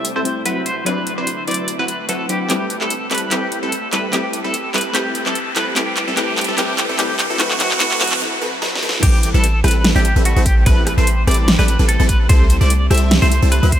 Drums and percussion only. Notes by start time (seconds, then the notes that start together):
0.05 closed hi-hat
0.25 closed hi-hat
0.46 closed hi-hat
0.66 closed hi-hat
0.86 closed hi-hat
1.07 closed hi-hat
1.27 closed hi-hat
1.48 closed hi-hat
1.51 closed hi-hat
1.54 closed hi-hat
1.68 closed hi-hat
1.88 closed hi-hat
2.09 closed hi-hat
2.29 closed hi-hat
2.50 clap, closed hi-hat
2.70 closed hi-hat
2.81 clap
2.90 closed hi-hat
3.11 clap, closed hi-hat
3.15 closed hi-hat
3.18 closed hi-hat
3.31 clap, closed hi-hat
3.52 closed hi-hat
3.72 closed hi-hat
3.93 clap, closed hi-hat
4.13 clap, closed hi-hat
4.33 closed hi-hat
4.54 closed hi-hat
4.74 clap, closed hi-hat
4.78 closed hi-hat
4.81 closed hi-hat
4.95 clap, closed hi-hat
5.15 closed hi-hat
5.26 clap
5.35 closed hi-hat
5.56 clap, closed hi-hat
5.76 clap, closed hi-hat
5.97 clap, closed hi-hat
6.17 clap, closed hi-hat
6.38 clap, closed hi-hat
6.41 closed hi-hat
6.44 closed hi-hat
6.58 clap, closed hi-hat
6.78 clap, closed hi-hat
6.99 clap, closed hi-hat
7.19 clap, closed hi-hat
7.40 clap, closed hi-hat
7.51 clap
7.60 clap, closed hi-hat
7.71 clap
7.80 clap, closed hi-hat
7.91 clap
8.01 clap, closed hi-hat
8.04 closed hi-hat
8.07 closed hi-hat
8.12 clap
8.62 snare
8.76 snare
8.89 snare
9.03 kick, closed hi-hat, crash
9.23 closed hi-hat
9.44 closed hi-hat
9.64 cross-stick, closed hi-hat
9.68 closed hi-hat
9.71 closed hi-hat
9.85 snare, closed hi-hat
10.05 closed hi-hat
10.25 closed hi-hat
10.46 kick, closed hi-hat
10.66 kick, closed hi-hat
10.87 cross-stick, closed hi-hat
11.07 closed hi-hat
11.28 cross-stick, closed hi-hat
11.31 closed hi-hat
11.34 closed hi-hat
11.48 snare, closed hi-hat
11.59 cross-stick
11.68 closed hi-hat
11.89 closed hi-hat
12.09 kick, closed hi-hat
12.29 kick, closed hi-hat
12.50 closed hi-hat
12.70 closed hi-hat
12.91 cross-stick, closed hi-hat
12.94 closed hi-hat
12.98 closed hi-hat
13.11 snare, closed hi-hat
13.32 closed hi-hat
13.52 closed hi-hat
13.72 kick, closed hi-hat